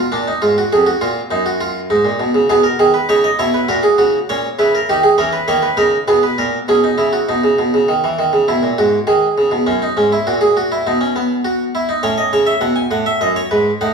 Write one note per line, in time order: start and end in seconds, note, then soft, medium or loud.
0.00 0.12 F4 medium
0.12 0.31 A#2 medium
0.12 0.26 D4 medium
0.28 0.42 D#4 medium
0.42 0.60 G#2 medium
0.42 0.56 F4 medium
0.58 0.72 F#4 medium
0.73 0.91 F2 medium
0.73 0.86 G#4 medium
0.86 1.01 F#4 medium
1.01 1.20 A#2 medium
1.01 1.19 F4 medium
1.31 1.88 F#2 medium
1.31 1.45 D#4 medium
1.46 1.60 F#4 medium
1.61 1.79 F4 medium
1.90 2.04 G#2 medium
1.90 2.48 D#4 medium
2.05 2.19 A#2 medium
2.20 2.34 B2 medium
2.34 2.49 C#3 medium
2.49 2.68 B2 medium
2.49 3.07 B3 medium
2.49 2.64 G#4 medium
2.63 2.78 A#4 medium
2.79 2.98 D#3 medium
2.79 2.94 G#4 medium
2.94 3.08 B4 medium
3.09 3.28 C#3 medium
3.09 3.27 D#4 medium
3.09 3.23 C#5 loud
3.24 3.38 D#5 medium
3.39 3.57 B2 medium
3.39 3.57 E4 medium
3.39 3.53 C#5 medium
3.54 3.68 B4 medium
3.69 3.87 A#2 medium
3.69 3.97 F#4 medium
3.69 3.83 A#4 medium
3.83 3.98 G#4 medium
3.98 4.17 C#3 medium
3.98 4.17 F#4 medium
4.29 4.48 A#2 medium
4.29 4.48 C#4 medium
4.29 4.47 C#5 medium
4.59 4.77 C#3 medium
4.59 4.77 E4 medium
4.59 4.73 B4 medium
4.75 4.88 A#4 medium
4.89 5.08 D#3 medium
4.89 5.07 D#4 medium
4.89 5.03 G4 medium
5.03 5.18 G#4 medium
5.18 5.37 E3 medium
5.18 5.37 C#4 medium
5.18 5.32 A#4 medium
5.33 5.47 B4 medium
5.48 5.67 D#3 medium
5.48 5.66 A#3 medium
5.48 5.62 C#5 medium
5.62 5.77 B4 medium
5.77 5.96 C#3 medium
5.77 5.96 D#4 medium
5.77 5.96 A#4 medium
6.08 6.26 B2 medium
6.08 6.66 B3 medium
6.08 6.23 G#4 medium
6.23 6.38 B4 medium
6.38 6.57 A#2 medium
6.38 6.57 A#4 medium
6.68 6.87 B2 medium
6.68 6.83 C#4 medium
6.68 7.27 G#4 medium
6.84 6.98 D#4 medium
6.98 7.17 C#3 medium
6.98 7.13 E4 medium
7.13 7.28 F#4 medium
7.29 7.43 B2 medium
7.29 8.45 D#4 medium
7.44 7.58 C#3 medium
7.59 7.73 B2 medium
7.74 7.89 C#3 medium
7.88 8.03 D#3 medium
8.04 8.18 E3 medium
8.19 8.33 D#3 medium
8.33 8.48 C#3 medium
8.48 8.63 B2 medium
8.48 8.67 E4 medium
8.63 8.78 A#2 medium
8.78 8.97 G#2 medium
8.78 8.97 F#4 medium
9.07 9.26 D#3 medium
9.07 9.65 G#4 medium
9.38 9.52 C#3 medium
9.51 9.66 B2 medium
9.67 9.85 F#2 medium
9.67 9.81 C#4 medium
9.82 9.97 D#4 medium
9.97 10.15 G#2 medium
9.97 10.11 C#4 medium
10.12 10.26 E4 medium
10.27 10.84 A#2 medium
10.27 10.41 F#4 medium
10.41 10.56 G#4 medium
10.57 10.71 F#4 medium
10.72 10.86 E4 medium
10.87 12.00 B2 medium
10.87 11.00 D#4 medium
11.01 11.15 C#4 medium
11.16 11.34 B3 medium
11.45 11.63 F#4 medium
11.75 11.88 E4 medium
11.89 12.03 D#4 medium
12.03 12.21 A2 medium
12.03 13.78 C#4 medium
12.03 12.17 C#5 medium
12.18 12.32 D#5 medium
12.33 12.51 C#3 medium
12.33 12.47 C#5 medium
12.46 12.61 E5 medium
12.61 12.80 B2 medium
12.61 12.76 F#5 medium
12.76 12.90 G#5 medium
12.91 13.09 A2 medium
12.91 13.06 F#5 medium
13.06 13.21 E5 medium
13.21 13.40 F#2 medium
13.21 13.36 D#5 medium
13.36 13.51 C#5 medium
13.51 13.70 G#2 medium
13.51 13.70 B4 medium
13.81 13.94 A2 soft
13.81 13.94 D#4 medium
13.81 13.94 F#5 medium